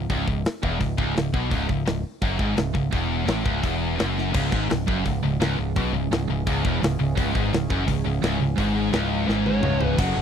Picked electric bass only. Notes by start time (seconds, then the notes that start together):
0.10 C#1
0.28 C#1
0.63 E1
0.81 C#1
0.99 C#1
1.16 C#1
1.34 B1
1.52 C#1
1.70 C#1
1.87 C#1
2.22 F#1
2.39 G#1
2.57 C#1
2.75 C#1
2.93 E1
3.28 A1
3.46 C#1
3.64 E1
4.00 F#1
4.35 C#1
4.53 G#1
4.71 C#1
4.88 F#1
5.06 C#1
5.23 C#1
5.41 C#1
5.59 C#1
5.77 B1
5.93 C#1
6.11 C#1
6.28 C#1
6.47 C#1
6.65 E1
6.82 C#1
6.99 C#1
7.18 C#1
7.35 G#1
7.53 C#1
7.71 F#1
7.88 C#1
8.05 C#1
8.22 C#1
8.40 C#1
8.58 G#1
8.93 C#1
9.28 G#1
9.63 C#1
9.99 F#1
10.17 F#1